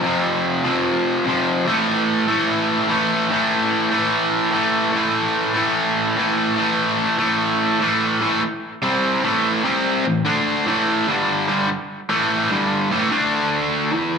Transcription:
0.03 overdriven electric guitar F2 C3 F3
0.64 overdriven electric guitar F2 C3 F3
1.25 overdriven electric guitar F2 C3 F3
1.66 overdriven electric guitar A2 E3 A3
2.28 overdriven electric guitar A2 E3 A3
2.88 overdriven electric guitar A2 E3 A3
3.30 overdriven electric guitar A2 E3 A3
3.91 overdriven electric guitar A2 E3 A3
4.52 overdriven electric guitar A2 E3 A3
4.92 overdriven electric guitar A2 E3 A3
5.54 overdriven electric guitar A2 E3 A3
6.16 overdriven electric guitar A2 E3 A3
6.56 overdriven electric guitar A2 E3 A3
7.18 overdriven electric guitar A2 E3 A3
7.80 overdriven electric guitar A2 E3 A3
8.21 overdriven electric guitar A2 E3 A3
8.42 muted overdriven electric guitar stroke
8.82 overdriven electric guitar C3 G3 C4
9.23 overdriven electric guitar A2 E3 A3
9.64 overdriven electric guitar C3 G3 C4
10.05 overdriven electric guitar A2 E3
10.25 overdriven electric guitar D3 A3 D4
10.66 overdriven electric guitar A2 E3 A3
11.07 overdriven electric guitar G2 D3 G3
11.48 overdriven electric guitar G2 D3 G3
11.69 muted overdriven electric guitar stroke
12.09 overdriven electric guitar A2 E3 A3
12.50 overdriven electric guitar G2 D3 G3
12.91 overdriven electric guitar A2 E3 A3
13.11 overdriven electric guitar D3 A3 D4
13.93 overdriven electric guitar E3 B3 E4

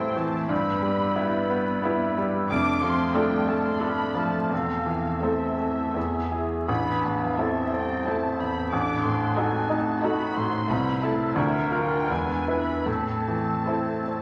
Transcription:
Already playing: grand piano A2 E3 C4 E4 A4, cello section G3, clarinet A3, viola section C4 E4, violin section E4 E5 G5, cor anglais C5, flute E6
0.16 grand piano E3, clarinet A3, cello section A3, cor anglais C5, violin section A5, flute E6
0.48 double bass section G1, grand piano G2, clarinet G3, cello section B3, cor anglais B4, violin section B5
0.52 flute E6
0.82 clarinet G3, grand piano G3, cor anglais B4, flute E6
1.15 clarinet G3, grand piano B3 E4, viola section B3 E4, violin section G4 E5, cor anglais B4, flute E6
1.49 clarinet G3, grand piano B3, cor anglais B4, flute E6
1.82 clarinet G3, viola section B3 E4, grand piano B3 E4, cor anglais B4, flute E6
1.86 violin section G4 E5
2.16 clarinet G3, grand piano G3, cor anglais B4, flute E6
2.49 double bass section F1, grand piano F2, clarinet A3, cello section D4, cor anglais A4, violin section D6, flute F6
2.81 grand piano F3, clarinet A3, cello section C4, cor anglais A4, violin section C6, flute F6
3.14 cello section G3, grand piano A3 D4 A4, clarinet A3, viola section A3 F4, violin section A4 D5 G5, cor anglais A4, flute F6
3.47 grand piano A3, clarinet A3, cello section A3, cor anglais A4, violin section A5, flute F6
3.65 cello section C4, violin section C6
3.80 grand piano A3 D4 A4, viola section A3 F4, clarinet A3, cello section B3, violin section A4 D5 B5, cor anglais A4, flute F6
4.15 grand piano F3, cello section A3, clarinet A3, cor anglais A4, violin section A5, flute F6
4.49 double bass section E1, grand piano E2, cello section F3, clarinet C4, violin section F5, flute E6
4.53 cor anglais A4
4.86 grand piano E3, clarinet C4, cor anglais A4, flute E6
5.22 cello section E3, grand piano A3 C4 A4, viola section A3 A4, clarinet C4, violin section A4 C5 E5, cor anglais A4, flute E6
5.58 grand piano A3, clarinet C4, cor anglais A4, flute E6
5.94 double bass section E1, grand piano E2, clarinet B3, viola section B3 E4, cor anglais G#4, violin section G#4 B4, flute E6
6.31 clarinet B3, grand piano E4 G#4, cor anglais G#4, flute E6
6.68 grand piano A1, double bass section A1, cello section B3, clarinet D4, cor anglais B4, violin section B5, flute E6
7.04 grand piano E2, cello section A3, violin section A5
7.21 cello section F3, violin section F5
7.37 cello section E3, viola section A3 E4, clarinet C4, grand piano C4 E4 A4, cor anglais A4, violin section A4 C5 E5, flute A6
7.73 cello section G3, grand piano C4, violin section G5
8.05 viola section A3 E4, cello section A3, grand piano C4 E4 A4, clarinet E4, cor anglais A4, violin section A4 C5 A5, flute G6
8.40 grand piano E2, cello section B3, violin section B5
8.72 double bass section A1, grand piano A1, clarinet D4, cello section D4, violin section D6, flute F#6
9.04 grand piano A2, cello section C4, violin section C6
9.37 cello section G#3, viola section A3 F#4, clarinet C4, grand piano D#4 F#4 A4, violin section A4 D#5 G#5
9.70 cello section A3, grand piano D#4, violin section A5
10.02 viola section A3 F#4, cello section B3, clarinet D#4, grand piano D#4 F#4 A4, cor anglais F#4, violin section A4 D#5 B5, flute F#6
10.37 grand piano A2, cello section C4, violin section C6
10.69 grand piano C2, double bass section C2, viola section A3 E4, cello section B3, clarinet E4, violin section A4 E5 B5, cor anglais C5, flute E6
11.03 cello section A3, grand piano E4 A4, violin section A5
11.36 grand piano D2, double bass section D2, cello section E3, viola section D4 F4, clarinet D4, violin section A#4 D5 E5, cor anglais A#4, flute F6
11.71 cello section F3, grand piano F4 A#4, violin section F5
11.85 cello section G3, violin section G5
12.09 double bass section E2, grand piano E2, cello section G#3, viola section B3 E4, clarinet D4, violin section B4 D5 G#5, cor anglais B4, flute E6
12.48 grand piano E4 B4
12.61 cello section B3, violin section B5
12.86 double bass section A1, grand piano A2, cello section A3, clarinet C4, cor anglais A4, violin section A5, flute E6
13.28 grand piano E3
13.67 viola section C4 E4, grand piano C4 E4 A4, violin section A4 C5
14.08 grand piano C4

